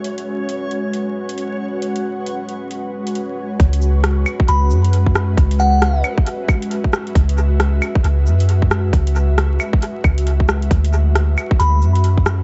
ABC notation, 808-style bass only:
X:1
M:4/4
L:1/8
Q:"Swing 16ths" 1/4=135
K:C#m
V:1 name="808-style bass" clef=bass
z8 | z8 | C,,3 z C,, F,,3 | C,,3 z4 z |
C,,3 z C,, F,,3 | C,,3 z2 C,,3 | =D,,3 z D,, F,,3 |]